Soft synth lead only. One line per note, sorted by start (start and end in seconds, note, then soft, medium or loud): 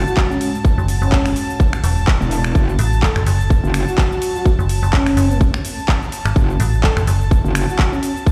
0.06 0.30 F#4 medium
0.30 0.37 C#4 medium
0.41 0.49 C#4 medium
1.02 1.36 C#4 loud
3.03 3.11 A4 medium
3.16 3.23 A4 medium
3.87 4.32 F#4 medium
4.35 4.48 F#4 medium
4.93 5.41 C#4 medium
6.84 6.92 A4 medium
6.97 7.04 A4 medium
7.68 7.92 F#4 medium
7.92 7.99 C#4 medium
8.03 8.11 C#4 medium